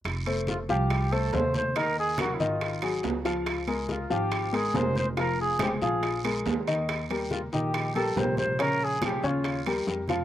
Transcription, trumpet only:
0, 0, Header, 1, 2, 480
1, 0, Start_track
1, 0, Tempo, 427350
1, 55, Time_signature, 4, 2, 24, 8
1, 11505, End_track
2, 0, Start_track
2, 0, Title_t, "Trumpet"
2, 0, Program_c, 0, 56
2, 549, Note_on_c, 0, 65, 70
2, 654, Note_off_c, 0, 65, 0
2, 782, Note_on_c, 0, 67, 80
2, 1262, Note_on_c, 0, 69, 85
2, 1279, Note_off_c, 0, 67, 0
2, 1504, Note_on_c, 0, 72, 92
2, 1520, Note_off_c, 0, 69, 0
2, 1738, Note_off_c, 0, 72, 0
2, 1749, Note_on_c, 0, 72, 83
2, 1984, Note_on_c, 0, 70, 91
2, 2001, Note_off_c, 0, 72, 0
2, 2218, Note_off_c, 0, 70, 0
2, 2238, Note_on_c, 0, 68, 90
2, 2450, Note_off_c, 0, 68, 0
2, 2476, Note_on_c, 0, 66, 73
2, 2630, Note_on_c, 0, 64, 52
2, 2646, Note_off_c, 0, 66, 0
2, 2714, Note_on_c, 0, 65, 74
2, 2731, Note_off_c, 0, 64, 0
2, 3183, Note_off_c, 0, 65, 0
2, 4393, Note_on_c, 0, 65, 78
2, 4606, Note_off_c, 0, 65, 0
2, 4626, Note_on_c, 0, 67, 84
2, 5118, Note_on_c, 0, 68, 85
2, 5135, Note_off_c, 0, 67, 0
2, 5354, Note_on_c, 0, 72, 90
2, 5370, Note_off_c, 0, 68, 0
2, 5583, Note_off_c, 0, 72, 0
2, 5603, Note_on_c, 0, 72, 78
2, 5704, Note_off_c, 0, 72, 0
2, 5839, Note_on_c, 0, 70, 92
2, 6049, Note_off_c, 0, 70, 0
2, 6077, Note_on_c, 0, 68, 93
2, 6288, Note_off_c, 0, 68, 0
2, 6325, Note_on_c, 0, 67, 75
2, 6426, Note_off_c, 0, 67, 0
2, 6544, Note_on_c, 0, 68, 76
2, 6985, Note_off_c, 0, 68, 0
2, 8217, Note_on_c, 0, 65, 66
2, 8324, Note_off_c, 0, 65, 0
2, 8463, Note_on_c, 0, 67, 83
2, 8904, Note_off_c, 0, 67, 0
2, 8933, Note_on_c, 0, 69, 84
2, 9189, Note_on_c, 0, 72, 85
2, 9206, Note_off_c, 0, 69, 0
2, 9410, Note_off_c, 0, 72, 0
2, 9417, Note_on_c, 0, 72, 88
2, 9664, Note_on_c, 0, 70, 98
2, 9681, Note_off_c, 0, 72, 0
2, 9929, Note_on_c, 0, 68, 94
2, 9945, Note_off_c, 0, 70, 0
2, 10150, Note_off_c, 0, 68, 0
2, 10163, Note_on_c, 0, 67, 81
2, 10409, Note_on_c, 0, 65, 75
2, 10426, Note_off_c, 0, 67, 0
2, 10871, Note_off_c, 0, 65, 0
2, 11505, End_track
0, 0, End_of_file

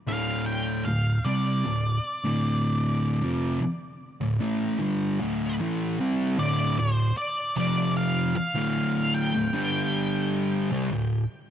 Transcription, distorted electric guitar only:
0, 0, Header, 1, 3, 480
1, 0, Start_track
1, 0, Key_signature, -1, "minor"
1, 0, Tempo, 788436
1, 42, Time_signature, 4, 2, 24, 8
1, 7002, End_track
2, 0, Start_track
2, 0, Title_t, "Distorted electric guitar"
2, 0, Program_c, 0, 30
2, 43, Note_on_c, 0, 38, 95
2, 47, Note_on_c, 0, 45, 98
2, 53, Note_on_c, 0, 50, 97
2, 515, Note_off_c, 0, 38, 0
2, 517, Note_off_c, 0, 45, 0
2, 520, Note_off_c, 0, 50, 0
2, 530, Note_on_c, 0, 45, 68
2, 531, Note_on_c, 0, 38, 74
2, 718, Note_off_c, 0, 38, 0
2, 718, Note_off_c, 0, 45, 0
2, 762, Note_on_c, 0, 48, 84
2, 767, Note_on_c, 0, 55, 79
2, 771, Note_on_c, 0, 60, 99
2, 995, Note_off_c, 0, 48, 0
2, 997, Note_off_c, 0, 55, 0
2, 999, Note_off_c, 0, 60, 0
2, 1007, Note_on_c, 0, 38, 74
2, 1009, Note_on_c, 0, 45, 71
2, 1196, Note_off_c, 0, 38, 0
2, 1197, Note_off_c, 0, 45, 0
2, 1366, Note_on_c, 0, 38, 88
2, 1368, Note_on_c, 0, 45, 102
2, 1373, Note_on_c, 0, 50, 103
2, 1957, Note_off_c, 0, 38, 0
2, 1958, Note_off_c, 0, 45, 0
2, 1960, Note_off_c, 0, 50, 0
2, 1963, Note_on_c, 0, 41, 95
2, 1969, Note_on_c, 0, 48, 92
2, 1971, Note_on_c, 0, 53, 98
2, 2196, Note_off_c, 0, 41, 0
2, 2199, Note_off_c, 0, 48, 0
2, 2200, Note_off_c, 0, 53, 0
2, 2562, Note_on_c, 0, 38, 62
2, 2564, Note_on_c, 0, 45, 71
2, 2675, Note_off_c, 0, 45, 0
2, 2680, Note_off_c, 0, 38, 0
2, 2683, Note_on_c, 0, 45, 89
2, 2688, Note_on_c, 0, 52, 83
2, 2691, Note_on_c, 0, 57, 91
2, 2916, Note_off_c, 0, 45, 0
2, 2918, Note_off_c, 0, 52, 0
2, 2920, Note_off_c, 0, 57, 0
2, 2920, Note_on_c, 0, 43, 104
2, 2924, Note_on_c, 0, 50, 99
2, 2929, Note_on_c, 0, 55, 112
2, 3154, Note_off_c, 0, 43, 0
2, 3156, Note_off_c, 0, 50, 0
2, 3159, Note_off_c, 0, 55, 0
2, 3167, Note_on_c, 0, 38, 83
2, 3169, Note_on_c, 0, 45, 97
2, 3173, Note_on_c, 0, 50, 103
2, 3398, Note_off_c, 0, 38, 0
2, 3399, Note_off_c, 0, 45, 0
2, 3401, Note_off_c, 0, 50, 0
2, 3409, Note_on_c, 0, 45, 93
2, 3412, Note_on_c, 0, 52, 104
2, 3416, Note_on_c, 0, 57, 106
2, 3639, Note_off_c, 0, 45, 0
2, 3641, Note_off_c, 0, 52, 0
2, 3643, Note_off_c, 0, 57, 0
2, 3646, Note_on_c, 0, 48, 79
2, 3652, Note_on_c, 0, 55, 94
2, 3655, Note_on_c, 0, 60, 102
2, 3877, Note_off_c, 0, 48, 0
2, 3881, Note_off_c, 0, 55, 0
2, 3882, Note_off_c, 0, 60, 0
2, 3886, Note_on_c, 0, 38, 99
2, 3890, Note_on_c, 0, 45, 103
2, 3893, Note_on_c, 0, 50, 112
2, 4117, Note_off_c, 0, 38, 0
2, 4119, Note_off_c, 0, 45, 0
2, 4121, Note_off_c, 0, 50, 0
2, 4133, Note_on_c, 0, 38, 59
2, 4134, Note_on_c, 0, 45, 67
2, 4320, Note_off_c, 0, 38, 0
2, 4320, Note_off_c, 0, 45, 0
2, 4606, Note_on_c, 0, 41, 91
2, 4610, Note_on_c, 0, 48, 91
2, 4616, Note_on_c, 0, 53, 90
2, 5077, Note_off_c, 0, 41, 0
2, 5079, Note_off_c, 0, 48, 0
2, 5082, Note_off_c, 0, 53, 0
2, 5206, Note_on_c, 0, 38, 81
2, 5210, Note_on_c, 0, 45, 104
2, 5217, Note_on_c, 0, 50, 114
2, 5677, Note_off_c, 0, 38, 0
2, 5679, Note_off_c, 0, 45, 0
2, 5682, Note_off_c, 0, 50, 0
2, 5688, Note_on_c, 0, 38, 67
2, 5689, Note_on_c, 0, 45, 83
2, 5799, Note_off_c, 0, 38, 0
2, 5802, Note_off_c, 0, 45, 0
2, 5802, Note_on_c, 0, 43, 97
2, 5805, Note_on_c, 0, 50, 92
2, 5813, Note_on_c, 0, 55, 117
2, 6514, Note_off_c, 0, 43, 0
2, 6516, Note_off_c, 0, 50, 0
2, 6520, Note_off_c, 0, 55, 0
2, 6523, Note_on_c, 0, 48, 85
2, 6527, Note_on_c, 0, 55, 100
2, 6635, Note_off_c, 0, 48, 0
2, 6637, Note_off_c, 0, 55, 0
2, 6646, Note_on_c, 0, 38, 63
2, 6647, Note_on_c, 0, 45, 65
2, 6836, Note_off_c, 0, 38, 0
2, 6836, Note_off_c, 0, 45, 0
2, 7002, End_track
3, 0, Start_track
3, 0, Title_t, "Muted distorted electric guitar strokes"
3, 2201, Note_on_c, 9, 29, 52
3, 2262, Note_off_c, 9, 29, 0
3, 5088, Note_on_c, 9, 29, 58
3, 5149, Note_off_c, 9, 29, 0
3, 7002, End_track
0, 0, End_of_file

